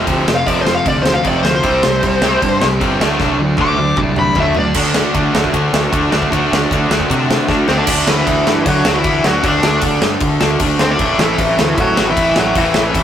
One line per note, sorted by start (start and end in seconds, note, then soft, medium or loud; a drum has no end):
0.06 0.24 D2 medium
0.06 0.25 F2 medium
0.06 0.25 C3 medium
0.06 0.26 F3 loud
0.06 kick loud
0.06 crash medium
0.26 0.44 F1 medium
0.26 0.44 F2 medium
0.26 0.45 C3 medium
0.26 0.46 F3 medium
0.26 snare loud
0.35 0.47 F5 loud
0.46 0.79 F1 loud
0.46 0.65 F2 loud
0.46 0.65 C3 loud
0.46 0.65 F3 loud
0.46 0.59 D5 loud
0.46 kick loud
0.46 crash medium
0.62 0.73 C5 loud
0.66 0.84 F2 medium
0.66 0.84 C3 medium
0.66 0.86 F3 loud
0.66 snare loud
0.75 0.86 F5 loud
0.85 1.19 D2 medium
0.85 1.03 F2 medium
0.85 1.03 C3 medium
0.85 1.07 F3 loud
0.85 1.00 D5 loud
0.85 kick loud
0.85 crash medium
1.03 1.13 C5 loud
1.03 snare loud
1.07 1.24 F2 medium
1.07 1.24 C3 medium
1.07 1.26 F3 loud
1.14 1.27 F5 loud
1.24 1.41 F1 loud
1.24 1.43 F2 medium
1.24 1.43 C3 loud
1.24 1.44 F3 loud
1.24 1.39 D5 medium
1.24 kick loud
1.24 crash medium
1.43 1.61 D2 medium
1.43 1.62 F2 medium
1.43 1.62 C3 loud
1.43 1.53 C5 loud
1.43 snare loud
1.47 1.64 F3 medium
1.55 2.67 C5 loud
1.63 1.80 C2 medium
1.63 1.82 C3 loud
1.63 1.82 G3 loud
1.63 1.83 C4 loud
1.63 kick loud
1.63 crash medium
1.83 2.01 C2 medium
1.83 2.02 C3 medium
1.83 2.02 G3 medium
1.83 2.04 C4 medium
1.83 snare loud
2.03 2.36 C2 medium
2.03 2.21 C3 medium
2.03 2.21 G3 loud
2.03 2.23 C4 medium
2.03 kick loud
2.03 crash medium
2.22 2.40 C3 loud
2.22 2.41 G3 loud
2.22 2.42 C4 loud
2.22 snare loud
2.42 2.59 G2 medium
2.42 2.60 C3 medium
2.42 2.59 G3 medium
2.42 2.62 C4 loud
2.42 kick loud
2.42 crash medium
2.61 2.79 C2 loud
2.61 2.79 C3 medium
2.61 2.79 G3 medium
2.61 2.82 C4 loud
2.61 snare loud
2.80 2.98 G1 medium
2.80 2.99 C3 medium
2.80 2.99 G3 loud
2.80 2.99 C4 medium
2.80 kick loud
2.80 crash medium
2.99 3.18 D2 medium
2.99 3.18 D3 loud
2.99 3.18 F#3 loud
2.99 3.18 A3 loud
2.99 3.20 D4 loud
2.99 3.19 D4 loud
2.99 snare loud
3.19 3.36 C2 medium
3.19 3.38 D3 loud
3.19 3.39 F#3 loud
3.19 3.39 A3 loud
3.19 3.39 D4 medium
3.19 3.39 D4 loud
3.19 kick loud
3.19 snare medium
3.39 3.56 D2 medium
3.39 3.56 D3 medium
3.39 3.57 F#3 medium
3.39 3.57 A3 medium
3.39 3.58 A3 medium
3.39 3.58 D4 loud
3.57 3.91 D2 medium
3.57 3.77 D3 loud
3.57 3.77 F#3 loud
3.57 3.78 A3 loud
3.57 3.77 D4 loud
3.57 kick loud
3.57 high tom medium
3.61 3.98 D6 loud
3.78 3.96 D3 medium
3.78 3.95 F#3 medium
3.78 3.96 A3 medium
3.78 3.96 A3 loud
3.78 3.97 D4 medium
3.96 4.30 C2 medium
3.96 4.15 D3 medium
3.96 4.15 F#3 medium
3.96 4.15 A3 medium
3.96 4.15 D4 loud
3.96 kick loud
3.96 mid tom loud
4.16 4.35 D3 medium
4.16 4.35 F#3 medium
4.16 4.35 A3 medium
4.16 4.35 A3 loud
4.16 4.36 D4 loud
4.16 4.38 B5 loud
4.16 mid tom medium
4.35 4.53 D2 loud
4.35 4.55 D3 medium
4.35 4.55 F#3 loud
4.35 4.56 A3 loud
4.35 4.55 D4 loud
4.35 4.56 D4 loud
4.35 kick loud
4.35 floor tom loud
4.40 4.58 E5 loud
4.55 4.73 D2 medium
4.55 4.74 D3 medium
4.55 4.74 F#3 medium
4.55 4.75 A3 medium
4.55 4.75 D4 loud
4.55 floor tom loud
4.59 4.77 D5 loud
4.74 5.02 D2 medium
4.74 5.14 D3 medium
4.74 5.14 A3 loud
4.74 5.15 D4 loud
4.74 5.14 F#4 loud
4.74 kick loud
4.74 crash loud
4.94 snare loud
5.14 5.28 D2 loud
5.14 5.33 D3 medium
5.14 5.33 A3 loud
5.14 5.34 D4 loud
5.14 5.34 F#4 medium
5.14 kick loud
5.14 ride medium
5.33 5.49 D2 medium
5.33 5.53 D3 medium
5.33 5.54 A3 medium
5.33 5.54 D4 loud
5.33 5.55 F#4 loud
5.33 snare loud
5.44 kick medium
5.53 5.67 D2 medium
5.53 5.91 D3 loud
5.53 5.92 A3 medium
5.53 5.92 D4 loud
5.53 5.92 F#4 loud
5.53 kick loud
5.53 ride medium
5.73 5.87 D2 medium
5.73 snare loud
5.92 6.06 D2 loud
5.92 6.10 D3 medium
5.92 6.11 A3 medium
5.92 6.11 D4 loud
5.92 6.11 F#4 medium
5.92 kick loud
5.92 ride medium
6.11 6.26 D2 medium
6.11 6.30 D3 loud
6.11 6.31 A3 medium
6.11 6.31 D4 medium
6.11 6.31 F#4 loud
6.11 snare loud
6.15 6.31 D3 medium
6.22 kick loud
6.31 6.45 D2 medium
6.31 6.70 D3 medium
6.31 6.70 A3 loud
6.31 6.71 D4 loud
6.31 6.70 F#4 loud
6.31 kick loud
6.31 ride medium
6.51 6.65 D2 medium
6.51 snare loud
6.71 6.85 D2 loud
6.71 6.90 D3 loud
6.71 6.91 A3 loud
6.71 6.91 D4 loud
6.71 6.91 F#4 loud
6.71 kick loud
6.71 ride medium
6.91 7.04 D2 medium
6.91 7.09 D3 medium
6.91 7.10 A3 loud
6.91 7.10 D4 loud
6.91 7.10 F#4 loud
6.91 snare loud
7.00 kick medium
7.10 7.36 C3 medium
7.10 7.47 D3 loud
7.10 7.47 A3 loud
7.10 7.47 D4 loud
7.10 7.47 F#4 loud
7.10 kick loud
7.10 ride medium
7.31 snare loud
7.48 7.62 D2 loud
7.48 7.67 D3 medium
7.48 7.67 A3 loud
7.48 7.68 D4 medium
7.48 7.68 F#4 loud
7.48 kick loud
7.48 snare medium
7.68 7.81 D2 medium
7.68 7.86 D3 medium
7.68 7.87 A3 medium
7.68 7.78 C4 medium
7.68 7.87 D4 loud
7.68 7.87 F#4 medium
7.68 7.78 C5 medium
7.68 snare loud
7.77 8.09 D4 medium
7.77 8.05 D5 medium
7.87 8.03 D2 medium
7.87 9.42 D3 loud
7.87 9.43 A3 medium
7.87 9.43 D4 medium
7.87 9.43 F#4 loud
7.87 9.45 A4 medium
7.87 kick loud
7.87 crash loud
7.87 crash medium
8.07 8.22 D2 medium
8.07 8.62 E3 medium
8.07 8.69 E4 loud
8.07 snare loud
8.27 8.42 D2 loud
8.27 kick loud
8.27 crash medium
8.46 8.61 G2 medium
8.46 snare loud
8.66 8.81 D3 loud
8.66 8.93 F#3 loud
8.66 8.97 F#4 loud
8.66 kick loud
8.66 crash medium
8.85 9.00 D2 loud
8.85 9.02 D3 medium
8.85 9.04 A3 loud
8.85 9.04 D4 loud
8.85 snare loud
8.94 9.22 E3 medium
8.94 9.24 E4 loud
9.03 9.19 D2 medium
9.03 9.41 D3 medium
9.03 9.43 A3 medium
9.03 9.43 D4 medium
9.03 kick loud
9.03 crash medium
9.24 9.39 D2 medium
9.24 9.43 F#3 medium
9.24 snare loud
9.29 9.47 F#4 loud
9.43 9.59 D2 medium
9.43 10.98 D3 loud
9.43 11.00 A3 loud
9.43 10.99 D4 loud
9.43 10.99 F#4 medium
9.43 11.01 A4 loud
9.43 9.99 D5 medium
9.43 kick loud
9.43 crash medium
9.48 10.01 D4 loud
9.63 9.77 D2 medium
9.63 snare loud
9.81 9.97 D2 medium
9.81 kick loud
9.81 crash medium
10.01 10.16 G2 medium
10.01 snare loud
10.20 10.36 D3 loud
10.20 kick loud
10.20 crash medium
10.40 10.55 D2 loud
10.40 10.59 D3 medium
10.40 10.61 A3 medium
10.40 10.59 D4 loud
10.40 snare loud
10.60 10.75 D2 loud
10.60 10.98 D3 medium
10.60 11.00 A3 medium
10.60 11.00 D4 medium
10.60 kick loud
10.60 crash medium
10.79 10.95 D2 medium
10.79 10.90 C5 medium
10.79 snare loud
10.83 10.92 C4 medium
10.91 11.21 D4 loud
10.91 11.18 D5 medium
10.99 11.14 A1 medium
10.99 12.54 A2 loud
10.99 12.54 E3 loud
10.99 12.57 A3 loud
10.99 12.55 C4 loud
10.99 12.55 E4 loud
10.99 12.59 A4 loud
10.99 kick loud
10.99 crash medium
11.19 11.34 A1 medium
11.19 11.74 E3 medium
11.19 11.80 E4 loud
11.19 snare loud
11.38 11.53 A1 medium
11.38 kick loud
11.38 crash medium
11.59 11.74 D2 loud
11.59 snare loud
11.78 11.92 A2 loud
11.78 12.06 F#3 medium
11.78 12.09 F#4 loud
11.78 kick loud
11.78 crash medium
11.97 12.12 A1 loud
11.97 12.14 A2 medium
11.97 12.16 E3 medium
11.97 12.18 A3 medium
11.97 snare loud
12.10 12.36 E3 medium
12.10 12.39 E4 loud
12.15 12.31 A1 loud
12.15 12.53 A2 medium
12.15 12.55 E3 medium
12.15 12.57 A3 medium
12.15 kick loud
12.15 crash medium
12.36 12.52 A1 medium
12.36 12.56 F#3 medium
12.36 12.58 F#4 medium
12.36 snare loud
12.55 12.70 A1 medium
12.55 13.03 A2 medium
12.55 13.03 E3 medium
12.55 13.03 E3 loud
12.55 13.03 A3 loud
12.55 13.03 C4 loud
12.55 13.03 E4 medium
12.55 13.03 E4 loud
12.55 13.03 A4 loud
12.55 kick loud
12.55 crash medium
12.74 12.90 A1 medium
12.74 snare loud
12.94 13.03 A1 medium
12.94 kick loud
12.94 crash medium